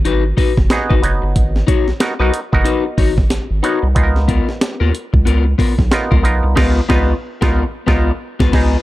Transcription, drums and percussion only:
0, 0, Header, 1, 2, 480
1, 0, Start_track
1, 0, Tempo, 652174
1, 997, Time_signature, 4, 2, 24, 8
1, 6492, End_track
2, 0, Start_track
2, 0, Title_t, "Drums"
2, 39, Note_on_c, 9, 42, 79
2, 112, Note_off_c, 9, 42, 0
2, 277, Note_on_c, 9, 36, 89
2, 279, Note_on_c, 9, 46, 67
2, 350, Note_off_c, 9, 36, 0
2, 352, Note_off_c, 9, 46, 0
2, 423, Note_on_c, 9, 36, 101
2, 423, Note_on_c, 9, 38, 39
2, 496, Note_off_c, 9, 38, 0
2, 497, Note_off_c, 9, 36, 0
2, 516, Note_on_c, 9, 38, 98
2, 523, Note_on_c, 9, 42, 82
2, 589, Note_off_c, 9, 38, 0
2, 597, Note_off_c, 9, 42, 0
2, 667, Note_on_c, 9, 36, 100
2, 740, Note_off_c, 9, 36, 0
2, 762, Note_on_c, 9, 42, 77
2, 835, Note_off_c, 9, 42, 0
2, 999, Note_on_c, 9, 42, 84
2, 1000, Note_on_c, 9, 36, 97
2, 1073, Note_off_c, 9, 42, 0
2, 1074, Note_off_c, 9, 36, 0
2, 1147, Note_on_c, 9, 38, 33
2, 1221, Note_off_c, 9, 38, 0
2, 1237, Note_on_c, 9, 36, 102
2, 1238, Note_on_c, 9, 42, 76
2, 1311, Note_off_c, 9, 36, 0
2, 1312, Note_off_c, 9, 42, 0
2, 1382, Note_on_c, 9, 38, 38
2, 1455, Note_off_c, 9, 38, 0
2, 1475, Note_on_c, 9, 38, 127
2, 1477, Note_on_c, 9, 42, 101
2, 1548, Note_off_c, 9, 38, 0
2, 1550, Note_off_c, 9, 42, 0
2, 1719, Note_on_c, 9, 42, 82
2, 1793, Note_off_c, 9, 42, 0
2, 1862, Note_on_c, 9, 36, 97
2, 1935, Note_off_c, 9, 36, 0
2, 1954, Note_on_c, 9, 42, 89
2, 2028, Note_off_c, 9, 42, 0
2, 2192, Note_on_c, 9, 36, 92
2, 2194, Note_on_c, 9, 46, 72
2, 2266, Note_off_c, 9, 36, 0
2, 2267, Note_off_c, 9, 46, 0
2, 2339, Note_on_c, 9, 36, 102
2, 2341, Note_on_c, 9, 38, 39
2, 2413, Note_off_c, 9, 36, 0
2, 2415, Note_off_c, 9, 38, 0
2, 2432, Note_on_c, 9, 38, 85
2, 2439, Note_on_c, 9, 42, 91
2, 2505, Note_off_c, 9, 38, 0
2, 2512, Note_off_c, 9, 42, 0
2, 2677, Note_on_c, 9, 42, 81
2, 2751, Note_off_c, 9, 42, 0
2, 2914, Note_on_c, 9, 42, 85
2, 2915, Note_on_c, 9, 36, 106
2, 2987, Note_off_c, 9, 42, 0
2, 2989, Note_off_c, 9, 36, 0
2, 3063, Note_on_c, 9, 38, 33
2, 3136, Note_off_c, 9, 38, 0
2, 3154, Note_on_c, 9, 36, 100
2, 3155, Note_on_c, 9, 42, 81
2, 3227, Note_off_c, 9, 36, 0
2, 3229, Note_off_c, 9, 42, 0
2, 3303, Note_on_c, 9, 38, 34
2, 3376, Note_off_c, 9, 38, 0
2, 3396, Note_on_c, 9, 38, 124
2, 3398, Note_on_c, 9, 42, 101
2, 3469, Note_off_c, 9, 38, 0
2, 3471, Note_off_c, 9, 42, 0
2, 3640, Note_on_c, 9, 42, 72
2, 3714, Note_off_c, 9, 42, 0
2, 3781, Note_on_c, 9, 36, 99
2, 3854, Note_off_c, 9, 36, 0
2, 3878, Note_on_c, 9, 42, 79
2, 3952, Note_off_c, 9, 42, 0
2, 4113, Note_on_c, 9, 36, 79
2, 4119, Note_on_c, 9, 46, 64
2, 4187, Note_off_c, 9, 36, 0
2, 4192, Note_off_c, 9, 46, 0
2, 4259, Note_on_c, 9, 36, 96
2, 4261, Note_on_c, 9, 38, 39
2, 4333, Note_off_c, 9, 36, 0
2, 4335, Note_off_c, 9, 38, 0
2, 4354, Note_on_c, 9, 38, 91
2, 4361, Note_on_c, 9, 42, 90
2, 4427, Note_off_c, 9, 38, 0
2, 4435, Note_off_c, 9, 42, 0
2, 4503, Note_on_c, 9, 36, 108
2, 4577, Note_off_c, 9, 36, 0
2, 4599, Note_on_c, 9, 42, 78
2, 4673, Note_off_c, 9, 42, 0
2, 4836, Note_on_c, 9, 36, 114
2, 4836, Note_on_c, 9, 49, 83
2, 4837, Note_on_c, 9, 38, 116
2, 4909, Note_off_c, 9, 49, 0
2, 4910, Note_off_c, 9, 36, 0
2, 4910, Note_off_c, 9, 38, 0
2, 5076, Note_on_c, 9, 36, 101
2, 5077, Note_on_c, 9, 38, 109
2, 5150, Note_off_c, 9, 36, 0
2, 5150, Note_off_c, 9, 38, 0
2, 5462, Note_on_c, 9, 36, 124
2, 5463, Note_on_c, 9, 38, 120
2, 5535, Note_off_c, 9, 36, 0
2, 5537, Note_off_c, 9, 38, 0
2, 5798, Note_on_c, 9, 36, 105
2, 5800, Note_on_c, 9, 38, 97
2, 5872, Note_off_c, 9, 36, 0
2, 5873, Note_off_c, 9, 38, 0
2, 6184, Note_on_c, 9, 36, 125
2, 6184, Note_on_c, 9, 38, 113
2, 6257, Note_off_c, 9, 36, 0
2, 6258, Note_off_c, 9, 38, 0
2, 6279, Note_on_c, 9, 49, 82
2, 6280, Note_on_c, 9, 36, 106
2, 6280, Note_on_c, 9, 38, 99
2, 6353, Note_off_c, 9, 49, 0
2, 6354, Note_off_c, 9, 36, 0
2, 6354, Note_off_c, 9, 38, 0
2, 6492, End_track
0, 0, End_of_file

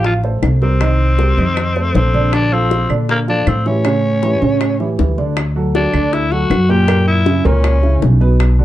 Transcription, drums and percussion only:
0, 0, Header, 1, 2, 480
1, 0, Start_track
1, 0, Tempo, 379987
1, 1019, Time_signature, 4, 2, 24, 8
1, 10925, End_track
2, 0, Start_track
2, 0, Title_t, "Drums"
2, 56, Note_on_c, 9, 60, 64
2, 183, Note_off_c, 9, 60, 0
2, 298, Note_on_c, 9, 60, 32
2, 425, Note_off_c, 9, 60, 0
2, 539, Note_on_c, 9, 60, 32
2, 539, Note_on_c, 9, 61, 77
2, 540, Note_on_c, 9, 75, 56
2, 665, Note_off_c, 9, 60, 0
2, 665, Note_off_c, 9, 61, 0
2, 666, Note_off_c, 9, 75, 0
2, 779, Note_on_c, 9, 60, 35
2, 905, Note_off_c, 9, 60, 0
2, 1019, Note_on_c, 9, 75, 57
2, 1020, Note_on_c, 9, 60, 69
2, 1145, Note_off_c, 9, 75, 0
2, 1146, Note_off_c, 9, 60, 0
2, 1498, Note_on_c, 9, 60, 59
2, 1625, Note_off_c, 9, 60, 0
2, 1741, Note_on_c, 9, 60, 30
2, 1867, Note_off_c, 9, 60, 0
2, 1977, Note_on_c, 9, 75, 53
2, 1984, Note_on_c, 9, 60, 56
2, 2103, Note_off_c, 9, 75, 0
2, 2111, Note_off_c, 9, 60, 0
2, 2223, Note_on_c, 9, 60, 31
2, 2350, Note_off_c, 9, 60, 0
2, 2466, Note_on_c, 9, 60, 30
2, 2466, Note_on_c, 9, 61, 74
2, 2592, Note_off_c, 9, 60, 0
2, 2592, Note_off_c, 9, 61, 0
2, 2704, Note_on_c, 9, 60, 30
2, 2830, Note_off_c, 9, 60, 0
2, 2940, Note_on_c, 9, 75, 63
2, 2943, Note_on_c, 9, 60, 66
2, 3066, Note_off_c, 9, 75, 0
2, 3069, Note_off_c, 9, 60, 0
2, 3426, Note_on_c, 9, 60, 54
2, 3552, Note_off_c, 9, 60, 0
2, 3660, Note_on_c, 9, 75, 57
2, 3664, Note_on_c, 9, 60, 32
2, 3787, Note_off_c, 9, 75, 0
2, 3790, Note_off_c, 9, 60, 0
2, 3907, Note_on_c, 9, 60, 59
2, 4033, Note_off_c, 9, 60, 0
2, 4146, Note_on_c, 9, 60, 30
2, 4272, Note_off_c, 9, 60, 0
2, 4381, Note_on_c, 9, 75, 66
2, 4382, Note_on_c, 9, 60, 34
2, 4382, Note_on_c, 9, 61, 72
2, 4508, Note_off_c, 9, 60, 0
2, 4508, Note_off_c, 9, 61, 0
2, 4508, Note_off_c, 9, 75, 0
2, 4622, Note_on_c, 9, 60, 32
2, 4748, Note_off_c, 9, 60, 0
2, 4859, Note_on_c, 9, 60, 66
2, 4864, Note_on_c, 9, 75, 64
2, 4985, Note_off_c, 9, 60, 0
2, 4991, Note_off_c, 9, 75, 0
2, 5340, Note_on_c, 9, 60, 57
2, 5466, Note_off_c, 9, 60, 0
2, 5582, Note_on_c, 9, 60, 31
2, 5709, Note_off_c, 9, 60, 0
2, 5820, Note_on_c, 9, 60, 60
2, 5827, Note_on_c, 9, 75, 57
2, 5946, Note_off_c, 9, 60, 0
2, 5954, Note_off_c, 9, 75, 0
2, 6065, Note_on_c, 9, 60, 33
2, 6191, Note_off_c, 9, 60, 0
2, 6303, Note_on_c, 9, 60, 30
2, 6303, Note_on_c, 9, 61, 74
2, 6429, Note_off_c, 9, 60, 0
2, 6429, Note_off_c, 9, 61, 0
2, 6543, Note_on_c, 9, 60, 34
2, 6670, Note_off_c, 9, 60, 0
2, 6780, Note_on_c, 9, 60, 68
2, 6780, Note_on_c, 9, 75, 63
2, 6906, Note_off_c, 9, 60, 0
2, 6907, Note_off_c, 9, 75, 0
2, 7262, Note_on_c, 9, 60, 56
2, 7388, Note_off_c, 9, 60, 0
2, 7497, Note_on_c, 9, 75, 63
2, 7502, Note_on_c, 9, 60, 34
2, 7624, Note_off_c, 9, 75, 0
2, 7628, Note_off_c, 9, 60, 0
2, 7744, Note_on_c, 9, 60, 60
2, 7870, Note_off_c, 9, 60, 0
2, 7981, Note_on_c, 9, 60, 32
2, 8107, Note_off_c, 9, 60, 0
2, 8220, Note_on_c, 9, 75, 59
2, 8222, Note_on_c, 9, 60, 30
2, 8222, Note_on_c, 9, 61, 71
2, 8346, Note_off_c, 9, 75, 0
2, 8348, Note_off_c, 9, 60, 0
2, 8348, Note_off_c, 9, 61, 0
2, 8460, Note_on_c, 9, 60, 36
2, 8587, Note_off_c, 9, 60, 0
2, 8693, Note_on_c, 9, 60, 70
2, 8699, Note_on_c, 9, 75, 66
2, 8819, Note_off_c, 9, 60, 0
2, 8825, Note_off_c, 9, 75, 0
2, 9172, Note_on_c, 9, 60, 55
2, 9299, Note_off_c, 9, 60, 0
2, 9415, Note_on_c, 9, 60, 35
2, 9541, Note_off_c, 9, 60, 0
2, 9652, Note_on_c, 9, 60, 65
2, 9652, Note_on_c, 9, 75, 56
2, 9778, Note_off_c, 9, 75, 0
2, 9779, Note_off_c, 9, 60, 0
2, 9894, Note_on_c, 9, 60, 32
2, 10021, Note_off_c, 9, 60, 0
2, 10134, Note_on_c, 9, 60, 34
2, 10134, Note_on_c, 9, 61, 82
2, 10260, Note_off_c, 9, 60, 0
2, 10260, Note_off_c, 9, 61, 0
2, 10375, Note_on_c, 9, 60, 34
2, 10501, Note_off_c, 9, 60, 0
2, 10612, Note_on_c, 9, 60, 65
2, 10616, Note_on_c, 9, 75, 64
2, 10738, Note_off_c, 9, 60, 0
2, 10743, Note_off_c, 9, 75, 0
2, 10925, End_track
0, 0, End_of_file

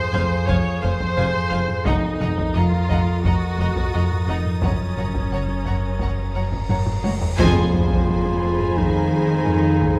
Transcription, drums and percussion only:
0, 0, Header, 1, 3, 480
1, 0, Start_track
1, 0, Tempo, 689655
1, 1298, Time_signature, 4, 2, 24, 8
1, 6954, End_track
2, 0, Start_track
2, 0, Title_t, "Taiko and cinematic ensemble drums"
2, 101, Note_on_c, 9, 41, 76
2, 171, Note_off_c, 9, 41, 0
2, 341, Note_on_c, 9, 41, 65
2, 411, Note_off_c, 9, 41, 0
2, 698, Note_on_c, 9, 41, 79
2, 768, Note_off_c, 9, 41, 0
2, 936, Note_on_c, 9, 45, 45
2, 1006, Note_off_c, 9, 45, 0
2, 1171, Note_on_c, 9, 45, 51
2, 1240, Note_off_c, 9, 45, 0
2, 1290, Note_on_c, 9, 41, 105
2, 1360, Note_off_c, 9, 41, 0
2, 1529, Note_on_c, 9, 45, 54
2, 1599, Note_off_c, 9, 45, 0
2, 1652, Note_on_c, 9, 41, 77
2, 1721, Note_off_c, 9, 41, 0
2, 1892, Note_on_c, 9, 45, 48
2, 1961, Note_off_c, 9, 45, 0
2, 2015, Note_on_c, 9, 41, 70
2, 2084, Note_off_c, 9, 41, 0
2, 2258, Note_on_c, 9, 41, 70
2, 2327, Note_off_c, 9, 41, 0
2, 2619, Note_on_c, 9, 41, 79
2, 2688, Note_off_c, 9, 41, 0
2, 2863, Note_on_c, 9, 45, 48
2, 2933, Note_off_c, 9, 45, 0
2, 3100, Note_on_c, 9, 45, 47
2, 3170, Note_off_c, 9, 45, 0
2, 3215, Note_on_c, 9, 41, 92
2, 3284, Note_off_c, 9, 41, 0
2, 3459, Note_on_c, 9, 45, 50
2, 3529, Note_off_c, 9, 45, 0
2, 3579, Note_on_c, 9, 41, 81
2, 3649, Note_off_c, 9, 41, 0
2, 3813, Note_on_c, 9, 45, 46
2, 3882, Note_off_c, 9, 45, 0
2, 3932, Note_on_c, 9, 41, 69
2, 4001, Note_off_c, 9, 41, 0
2, 4172, Note_on_c, 9, 41, 72
2, 4241, Note_off_c, 9, 41, 0
2, 4540, Note_on_c, 9, 41, 77
2, 4609, Note_off_c, 9, 41, 0
2, 4660, Note_on_c, 9, 45, 83
2, 4729, Note_off_c, 9, 45, 0
2, 4779, Note_on_c, 9, 45, 81
2, 4848, Note_off_c, 9, 45, 0
2, 4902, Note_on_c, 9, 48, 83
2, 4971, Note_off_c, 9, 48, 0
2, 5022, Note_on_c, 9, 43, 93
2, 5092, Note_off_c, 9, 43, 0
2, 5141, Note_on_c, 9, 41, 113
2, 5210, Note_off_c, 9, 41, 0
2, 5380, Note_on_c, 9, 45, 67
2, 5449, Note_off_c, 9, 45, 0
2, 5504, Note_on_c, 9, 41, 78
2, 5573, Note_off_c, 9, 41, 0
2, 5624, Note_on_c, 9, 45, 61
2, 5693, Note_off_c, 9, 45, 0
2, 5743, Note_on_c, 9, 45, 57
2, 5813, Note_off_c, 9, 45, 0
2, 5984, Note_on_c, 9, 45, 53
2, 6053, Note_off_c, 9, 45, 0
2, 6105, Note_on_c, 9, 41, 78
2, 6174, Note_off_c, 9, 41, 0
2, 6582, Note_on_c, 9, 45, 64
2, 6652, Note_off_c, 9, 45, 0
2, 6826, Note_on_c, 9, 41, 79
2, 6896, Note_off_c, 9, 41, 0
2, 6954, End_track
3, 0, Start_track
3, 0, Title_t, "Tam-tam"
3, 5138, Note_on_c, 9, 52, 67
3, 5208, Note_off_c, 9, 52, 0
3, 6954, End_track
0, 0, End_of_file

